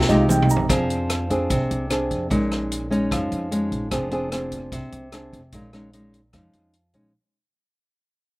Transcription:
Already playing: C3 D#4 F4 G4 C5
0.01 snare
0.09 C2 G#3 D#4 G4 D#5, shaker
0.29 G5, mid tom, shaker
0.42 mid tom
0.50 A#5, shaker
0.56 floor tom
0.69 F2 F3 C4 D4 G#4, kick, cross-stick, closed hi-hat
0.90 closed hi-hat
1.10 cross-stick, closed hi-hat
1.30 C4 D4 G#4, kick, closed hi-hat
1.50 C2 C3, kick, closed hi-hat
1.71 C2, closed hi-hat
1.90 C4 D4 G#4, cross-stick, closed hi-hat
2.11 F2, kick, closed hi-hat
2.30 A#1 A#2 G#3 C#4 D#4, kick, closed hi-hat
2.52 cross-stick, closed hi-hat
2.72 closed hi-hat
2.90 G#3 C#4 D#4, kick, closed hi-hat
3.11 F2 F3, kick, cross-stick, closed hi-hat
3.32 F2, closed hi-hat
3.51 G#3 C#4 D#4, closed hi-hat
3.72 A#1, kick, closed hi-hat
3.91 F1 F3 C4 D4 G#4, kick, cross-stick, closed hi-hat
4.11 C4 D4 G#4, closed hi-hat
4.32 C4 D4 G#4, cross-stick, closed hi-hat
4.52 kick, closed hi-hat
4.72 C2 C3, kick, closed hi-hat
4.92 C2, closed hi-hat
5.12 C4 D4 G#4, cross-stick, closed hi-hat
5.33 F1, kick, closed hi-hat
5.52 A#1 A#2 G#3 C#4 D#4, kick, closed hi-hat
5.73 G#3 C#4 D#4, cross-stick, closed hi-hat
5.93 G#3 C#4 D#4, closed hi-hat
6.13 kick, closed hi-hat
6.33 F2 F3 G#3 C#4 D#4, kick, cross-stick, closed hi-hat
6.53 F2, closed hi-hat
6.73 closed hi-hat
6.94 A#1 G#3 C#4 D#4, kick, closed hi-hat

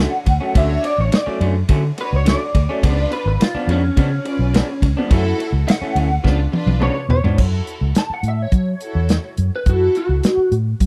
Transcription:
Already playing: D3 F#3 D4 F#4 C#5 F#5
0.00 A3 C#4
0.12 muted clean electric guitar stroke
0.26 D2, muted clean electric guitar stroke, kick, ride
0.41 F#3 A3 C#4
0.54 D2 D3 F#3 A3 C#4 D4 F#4 C#5, kick, ride
0.58 E5
0.69 muted clean electric guitar stroke
0.83 D5, muted clean electric guitar stroke, ride
0.98 A1 C#5
1.12 D5, muted clean electric guitar stroke, snare, ride
1.26 F#3 A3 C#4, muted fingered electric bass stroke
1.41 F#2 D3 F#3 A3 C#4, ride
1.56 muted clean electric guitar stroke
1.69 D3 F#3 A3 C#4, kick, ride
1.84 muted clean electric guitar stroke
1.97 D4 F#4 B4 C#5, muted clean electric guitar stroke, ride
2.13 C#2 C#5
2.25 D3 F#3 A3 C#4 D5, snare, ride
2.41 muted clean electric guitar stroke
2.55 D2, muted clean electric guitar stroke, kick, ride
2.69 F#3 A3 C#4
2.83 C#2 C#3 F3 B3 D4 F4 B4, kick, ride
2.98 muted clean electric guitar stroke
3.11 B4, muted clean electric guitar stroke, ride
3.26 G#1 B4
3.40 F4, muted clean electric guitar stroke, snare, ride
3.55 F3 B3 D4, muted fingered electric bass stroke
3.67 F2 C#3 F3 B3 C#4 D4, ride
3.84 muted clean electric guitar stroke
3.97 C#3 F3 B3 C#4 D4, kick, ride
4.11 muted clean electric guitar stroke
4.24 F4 B4 D5, muted clean electric guitar stroke, ride
4.39 B1
4.54 C#3 F3 B3 D4, snare, ride
4.69 muted clean electric guitar stroke
4.82 C#2, muted clean electric guitar stroke, kick, ride
4.97 F3 B3 D4
5.09 F#2 E3 A3 C#4 E4 F#4 A4, kick, ride
5.25 muted clean electric guitar stroke
5.38 muted clean electric guitar stroke, ride
5.52 C#2
5.67 F#5, muted clean electric guitar stroke, snare, ride
5.81 E3 A3 C#4, muted fingered electric bass stroke
5.95 D2 F#2 E3 A3 C#4, ride
6.10 muted clean electric guitar stroke
6.23 C#2 C#3 F3 B3 D4 F4 B4, kick, snare
6.38 muted clean electric guitar stroke
6.52 D4 F4 B4, muted clean electric guitar stroke, high tom
6.66 B1, high tom
6.80 C#3 F3 B3 D4 C#5, mid tom
6.96 muted clean electric guitar stroke
7.09 B2 C#5, muted clean electric guitar stroke, floor tom
7.24 G#2 F3 B3 D4, floor tom
7.38 F#2 E4 F#4 A4, kick, crash
7.67 closed hi-hat
7.81 C#2
7.95 A5, snare, closed hi-hat
8.10 F#5, muted fingered electric bass stroke
8.23 A2, closed hi-hat
8.28 E5
8.42 C#5
8.52 F#3, kick, closed hi-hat
8.80 E4 F#4 A4, closed hi-hat
8.95 E2
9.09 snare, closed hi-hat
9.37 F#2, closed hi-hat
9.56 B4
9.66 F#2 E4 F#4 A4, kick, closed hi-hat
9.95 F#4, closed hi-hat
10.09 C#2
10.23 snare, closed hi-hat
10.37 muted fingered electric bass stroke
10.52 A2, closed hi-hat
10.80 F#3, kick, closed hi-hat

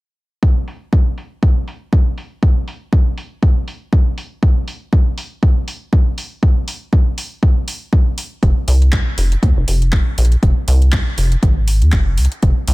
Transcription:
0.43 kick
0.68 open hi-hat
0.93 kick
1.18 open hi-hat
1.43 kick
1.68 open hi-hat
1.93 kick
2.18 open hi-hat
2.43 kick
2.68 open hi-hat
2.93 kick
3.18 open hi-hat
3.43 kick
3.68 open hi-hat
3.93 kick
4.18 open hi-hat
4.43 kick
4.68 open hi-hat
4.93 kick
5.18 open hi-hat
5.43 kick
5.68 open hi-hat
5.93 kick
6.18 open hi-hat
6.43 kick
6.68 open hi-hat
6.93 kick
7.18 open hi-hat
7.43 kick
7.68 open hi-hat
7.93 kick
8.18 open hi-hat
8.43 F1, kick, closed hi-hat
8.68 C2, open hi-hat
8.82 closed hi-hat
8.92 kick, clap, closed hi-hat
9.18 F1, open hi-hat
9.32 closed hi-hat
9.43 D#2, kick, closed hi-hat
9.57 F1
9.68 F1, open hi-hat
9.82 closed hi-hat
9.92 kick, clap
10.18 A#1, open hi-hat
10.25 closed hi-hat
10.32 closed hi-hat
10.43 F1, kick, closed hi-hat
10.68 C2, open hi-hat
10.82 closed hi-hat
10.92 kick, clap, closed hi-hat
11.18 F1, open hi-hat
11.32 closed hi-hat
11.43 G#1, kick, closed hi-hat
11.68 open hi-hat
11.82 D#2, closed hi-hat
11.92 F1, kick, clap
12.18 C2, open hi-hat
12.25 closed hi-hat
12.32 closed hi-hat
12.43 F1, kick, closed hi-hat
12.68 C2, open hi-hat

